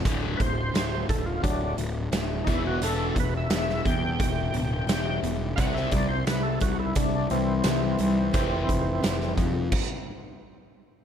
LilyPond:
<<
  \new Staff \with { instrumentName = "Tonewheel organ" } { \time 4/4 \key e \minor \tempo 4 = 87 r8 <b' c''>4 a'16 f'16 <fis d'>8 r4 <ees' e'>16 fis'16 | a'8 b'16 e''8. g''2 r8 | <f'' fis''>16 e''16 d''16 c''16 b'16 a'16 fis'16 e'16 d'8 <e c'>4.~ | <e c'>4. r2 r8 | }
  \new Staff \with { instrumentName = "Twelve-string acoustic guitar" } { \time 4/4 \key e \minor <d a d' fis'>8 <a d' fis'>8 <d a d' fis'>8 <a d' fis'>8 <d a d' fis'>8 <a d' fis'>8 <d a d' fis'>8 <e, b, e g b e'>8~ | <e, b, e g b e'>8 <e g b e'>8 <e, b, e g b e'>8 <e g b e'>8 <e g b e'>8 <e g b e'>8 <e, b, e g b e'>4 | <c e g c' e'>8 <g c' e'>8 <c e g c' e'>8 <g c' e'>8 <e g c' e'>8 <g c' e'>8 <c e g c' e'>4 | <f, c a c'>8 <a c'>8 <f, c a c'>8 <f a c' f'>8 r2 | }
  \new Staff \with { instrumentName = "Distorted electric guitar" } { \clef bass \time 4/4 \key e \minor <d, a, d>8 <d, a,>8 <d, a,>8 <d, a,>8 <d, a,>8 <d, a,>8 <d, a,>8 <e, b, e>8 | <e, b, e>8 <e, b,>8 <e, b,>8 <e, b,>8 <e, b,>8 <e, b,>8 <e, b,>8 <e, b,>8 | <c g c'>8 <c g>8 <c g>8 <c g>8 <c g>8 <c g>8 <c g>8 <c g>8 | <f, c f>8 <f, c>8 <f, c>8 <f, c>8 r2 | }
  \new Staff \with { instrumentName = "Overdriven electric guitar" } { \clef bass \time 4/4 \key e \minor <d, a, d>8 <d, a,>8 <d, a,>8 <d, a,>8 <d, a,>8 <d, a,>8 <d, a,>8 <e, b, e>8 | <e, b, e>8 <e, b,>8 <e, b,>8 <e, b,>8 <e, b,>8 <e, b,>8 <e, b,>8 <e, b,>8 | <c g c'>8 <c g>8 <c g>8 <c g>8 <c g>8 <c g>8 <c g>8 <c g>8 | <f, c f>8 <f, c>8 <f, c>8 <f, c>8 r2 | }
  \new Staff \with { instrumentName = "Picked electric bass" } { \clef bass \time 4/4 \key e \minor d,,8 d,,8 d,,8 d,,8 d,,8 d,,8 d,,8 e,,8 | e,,8 e,,8 e,,8 e,8 e,,8 d,,8 e,,8 e,,8 | c,8 c,8 c,8 c,8 c,8 c,8 c,8 c,8 | f,,8 f,,8 f,,8 f,8 r2 | }
  \new DrumStaff \with { instrumentName = "Drums" } \drummode { \time 4/4 <hh bd>8 <hh bd>8 <hh sn>8 <hh bd>8 <hh bd>8 hh8 <hh sn>8 <hh bd>8 | hh8 <hh bd>8 <hh sn>16 sn16 <hh bd>8 <hh bd>8 hh8 <hh sn>8 hh8 | <hh bd>16 sn16 <hh bd>8 <hh sn>8 <hh bd>8 <hh bd>8 hh8 <hh sn>8 hh8 | <hh bd>8 <hh bd>8 <hh sn>16 sn16 <hh bd>8 <cymc bd>4 r4 | }
>>